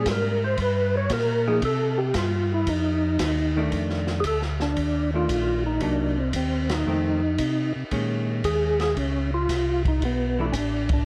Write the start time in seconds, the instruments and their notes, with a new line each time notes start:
Already playing: hollow-body jazz guitar G3 C4 D4
0.05 tonewheel organ G#2, kick, snare, hi-hat pedal, ride
0.11 tonewheel organ A#4
0.44 tonewheel organ C5
0.58 tonewheel organ G2, kick, ride
0.62 tonewheel organ B4
0.97 tonewheel organ C#5
1.10 tonewheel organ A#2 A#4, kick, snare, hi-hat pedal, ride
1.48 hollow-body jazz guitar F3 A#3 D#4, tonewheel organ G#4
1.62 tonewheel organ C3 A4, kick, ride
1.98 tonewheel organ G4
2.14 tonewheel organ G2, kick, snare, hi-hat pedal, ride
2.18 tonewheel organ F4
2.54 tonewheel organ E4
2.67 tonewheel organ F2 D#4, kick, ride
3.19 tonewheel organ D#2, kick, snare, hi-hat pedal, ride
3.57 hollow-body jazz guitar D#3 A3 D4
3.72 tonewheel organ F2, kick, ride
3.90 snare
4.07 snare
4.20 tonewheel organ G#4, hi-hat pedal, ride
4.25 tonewheel organ D2 A4, kick
4.42 snare
4.60 tonewheel organ D4, snare
4.76 tonewheel organ D#2, kick, ride
5.14 hollow-body jazz guitar D#3 A3 D4, tonewheel organ F4
5.29 tonewheel organ A#1, kick, hi-hat pedal, ride
5.67 tonewheel organ D#4
5.81 tonewheel organ C2 D4, hollow-body jazz guitar F#3 A#3 D#4, kick, ride
6.18 tonewheel organ C4
6.33 tonewheel organ D#2 C4, kick, hi-hat pedal, ride
6.70 tonewheel organ D#4, snare, ride
6.87 tonewheel organ F2, hollow-body jazz guitar D#3 A3 C4
7.38 tonewheel organ C3, kick, hi-hat pedal, ride
7.75 tonewheel organ C3
7.91 tonewheel organ A#2, hollow-body jazz guitar D#3 G#3 C#4, kick, ride
8.43 tonewheel organ D#2 G#4, kick, hi-hat pedal, ride
8.80 tonewheel organ G#4, snare, ride
8.96 tonewheel organ C#2 C#4, kick, ride
9.34 tonewheel organ F4
9.49 tonewheel organ C2, kick, snare, hi-hat pedal, ride
9.85 tonewheel organ D#4, kick, ride
10.01 tonewheel organ B1, kick, ride
10.05 tonewheel organ B3
10.39 hollow-body jazz guitar E3 A3 D4, tonewheel organ E4
10.53 tonewheel organ A1 C#4, kick, hi-hat pedal, ride
10.58 tonewheel organ D4
10.89 kick, ride
10.94 tonewheel organ D4